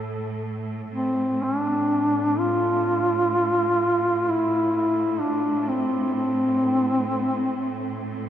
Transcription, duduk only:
0.93 C4
1.43 D4
2.39 F4
4.30 E4
4.76 E4
5.21 D4
5.68 C4
6.14 C4

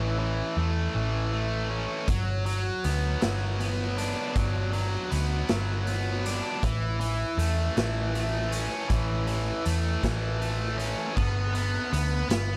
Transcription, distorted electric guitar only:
Already playing: E3 A3 C#4
0.19 E3
0.58 A3
0.96 E3
1.33 A3
1.70 C#4
2.08 F#3
2.46 F#3
2.84 B3
3.21 F#3
3.60 B3
3.98 D4
4.36 F#3
4.74 F#3
5.11 B3
5.49 F#3
5.87 B3
6.26 D4
6.63 E3
7.00 E3
7.38 A3
7.76 E3
8.14 A3
8.52 C#4
8.88 E3
9.28 E3
9.65 A3
10.04 E3
10.40 A3
10.77 C#4
11.15 B3
11.55 B3
11.93 B3
12.29 B3

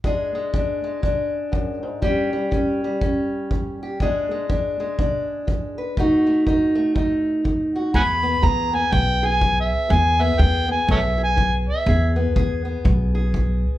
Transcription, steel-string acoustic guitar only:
0.04 E2 G#3 D4 G#4
0.35 G#3
0.54 E3 D4
0.84 G#3
1.02 B2 D4
1.52 F#2
1.83 G#2
2.02 A2 G3 C#4 G4
2.33 G3
2.51 E3 C#4
2.84 G3
3.02 E2 C#4
3.51 E3
3.83 G4
4.00 E2 G#3 D4 G#4
4.31 G#3
4.49 E3 D4
4.80 G#3
4.99 B2 D4
5.47 E3
5.78 B4
5.97 B2 A3 D#4 F#4
6.27 A3
6.46 D#3 D#4
6.75 A3
6.95 F#2 D#4
7.44 D#3
7.76 F#4
7.94 E2 G#4
8.23 B3
8.42 E3 G#4
8.73 B3
8.92 B2
9.23 G#4
9.42 E3
9.89 E2 G#4
10.20 B3
10.38 E3 G#4
10.68 B3
10.87 B2
11.18 G#4
11.36 E3
11.88 E2 G#4
12.16 B3
12.36 E3 G#4
12.65 B3
12.84 B2
13.15 G#4
13.34 E3

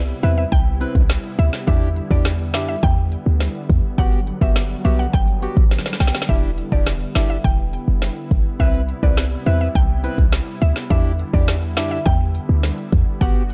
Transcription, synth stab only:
0.23 C4 E4 B4
0.81 C4 E4 B4
1.67 D4 E4 G4
2.10 D4 E4 G4
2.54 D4 E4 G4
3.98 B3 F#4 G4
4.41 B3 F#4 G4
4.84 B3 F#4 G4
5.42 B3 F#4 G4
6.29 D4 E4 G4
6.72 D4 E4 G4
7.15 D4 E4 G4
8.59 C4 E4 B4
9.03 C4 E4 B4
9.46 C4 E4 B4
10.04 C4 E4 B4
10.90 D4 E4 G4
11.33 D4 E4 G4
11.77 D4 E4 G4
13.21 B3 F#4 G4

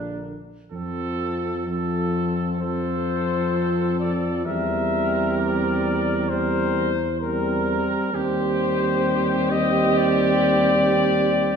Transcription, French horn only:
Already playing: A#3
0.72 C4
1.68 C4
2.61 C4
4.47 C4
6.30 C4
7.22 C4
8.13 C4

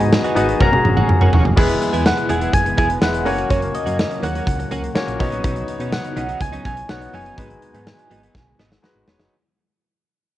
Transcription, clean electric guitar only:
0.01 muted clean electric guitar stroke
0.12 muted clean electric guitar stroke
0.24 B3 D#4 F#4
0.36 B3 D#4 F#4
0.49 muted clean electric guitar stroke
0.61 A#3 C#4 F#4
0.73 muted clean electric guitar stroke
0.85 muted clean electric guitar stroke
0.97 A#3 C#4 F#4
1.09 muted clean electric guitar stroke
1.22 A#3 C#4 F#4
1.33 A#3 C#4 F#4
1.46 muted clean electric guitar stroke
1.57 B3 E4 G#4
1.69 muted clean electric guitar stroke
1.81 muted clean electric guitar stroke
1.93 B3 E4 G#4
2.17 muted clean electric guitar stroke
2.29 B3 E4 G#4
2.41 B3 E4 G#4
2.53 muted clean electric guitar stroke
2.66 muted clean electric guitar stroke
2.77 B3 E4 G#4
2.89 muted clean electric guitar stroke
3.01 muted clean electric guitar stroke
3.14 muted clean electric guitar stroke
3.26 A#3 C#4 F#4
3.38 A#3 C#4 F#4
3.50 A#3 C#4 F#4
3.62 muted clean electric guitar stroke
3.74 muted clean electric guitar stroke
3.86 A#3 C#4 F#4
4.11 muted clean electric guitar stroke
4.23 A#3 C#4 F#4
4.35 A#3 C#4 F#4
4.47 muted clean electric guitar stroke
4.59 muted clean electric guitar stroke
4.71 A#3 C#4 F#4
4.84 muted clean electric guitar stroke
4.96 muted clean electric guitar stroke
5.08 muted clean electric guitar stroke
5.20 F#3 C#4 D#4
5.31 F#3 C#4 D#4
5.43 F#3 C#4 D#4
5.56 muted clean electric guitar stroke
5.68 muted clean electric guitar stroke
5.80 F#3 C#4 D#4
5.93 muted clean electric guitar stroke
6.05 muted clean electric guitar stroke
6.16 F#3 C#4 D#4
6.28 F#3 C#4 D#4
6.41 muted clean electric guitar stroke
6.53 F#3 C#4 D#4
6.65 F#3 C#4 D#4
6.77 muted clean electric guitar stroke
6.89 muted clean electric guitar stroke
7.02 muted clean electric guitar stroke
7.14 F#3 C#4 D#4
7.26 F#3 C#4 D#4
7.38 F#3 B3 D#4
7.50 muted clean electric guitar stroke
7.63 muted clean electric guitar stroke
7.75 F#3 B3 D#4
7.98 muted clean electric guitar stroke
8.10 F#3 B3 D#4
8.23 F#3 B3 D#4
8.47 muted clean electric guitar stroke
8.59 F#3 B3 D#4
8.71 muted clean electric guitar stroke
8.84 muted clean electric guitar stroke
8.96 muted clean electric guitar stroke
9.07 F#3 B3 D#4
9.19 F#3 B3 D#4

